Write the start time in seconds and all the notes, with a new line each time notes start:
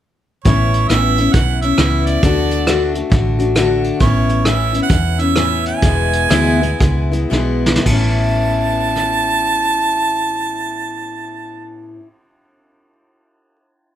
0.45 A1 A2 E3 B3 C#4 E4 C#5, kick, closed hi-hat
0.74 closed hi-hat
0.88 A1 A2 E3 B3 C#4 E4 E5, cross-stick, closed hi-hat
1.18 B3 C#4 E4, closed hi-hat
1.33 B1 E3 B3 C#4 E4 F#5, kick, closed hi-hat
1.61 B3 C#4 E4 E5, closed hi-hat
1.77 C#2 A2 E3 B3 C#4 E4, cross-stick, closed hi-hat
2.06 D5, closed hi-hat
2.23 D2 D3 A3 D4 F#4, kick, closed hi-hat
2.51 closed hi-hat
2.67 D3 A3 D4 F#4, cross-stick, closed hi-hat
2.94 A3 D4 F#4, closed hi-hat
3.10 A1 D3 A3 D4 F#4, kick, closed hi-hat
3.39 A3 D4 F#4, closed hi-hat
3.55 D3 A3 D4 F#4, cross-stick, closed hi-hat
3.84 closed hi-hat
4.00 A1 A2 E3 B3 C#4 E4 C#5, kick, closed hi-hat
4.29 closed hi-hat
4.45 A2 E3 B3 C#4 E4 E5, cross-stick, closed hi-hat
4.73 B3 C#4 E4, closed hi-hat
4.83 F#5
4.89 E2 E3 B3 C#4 E4, kick, closed hi-hat
5.19 B3 C#4 E4 E5, closed hi-hat
5.36 A2 E3 B3 C#4 E4, cross-stick, closed hi-hat
5.65 G#5, closed hi-hat
5.82 E1 E2 B2 E3 G#3 B3 E4, kick, closed hi-hat
6.13 closed hi-hat
6.29 D2 E2 B2 E3 G#3 B3 E4, cross-stick, closed hi-hat
6.61 E3 G#3 B3 E4, closed hi-hat
6.79 C#2 E3 G#3 B3 E4, kick, closed hi-hat
7.11 E3 G#3 B3 E4, closed hi-hat
7.30 B1 E2 B2 E3 G#3 B3 E4, snare
7.66 snare
7.76 snare
7.82 A1 A2 E3 A5, ride
7.86 B3, kick
7.91 C#4 E4
8.96 cross-stick